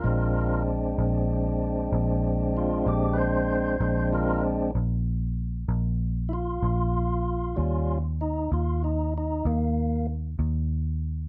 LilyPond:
<<
  \new Staff \with { instrumentName = "Tonewheel organ" } { \time 12/8 \key bes \mixolydian \tempo 4. = 64 << { <f' bes'>4 r2. f'8 g'8 <ces'' c''>4~ | <ces'' c''>8 <f' bes'>8 r2. <e' f'>2~ | <e' f'>4 ees'8 f'8 ees'8 ees'8 bes4 r2 | } \\ { <aes c' d'>1. | <aes c' d'>4. r1 r8 | <g des' f'>8 r1 r4. | } >> }
  \new Staff \with { instrumentName = "Fingered electric bass" } { \clef bass \time 12/8 \key bes \mixolydian bes,,4. bes,,4. bes,,4. bes,,4. | bes,,4. bes,,4. bes,,4. bes,,4. | ees,4. ees,4. ees,4. ees,4. | }
>>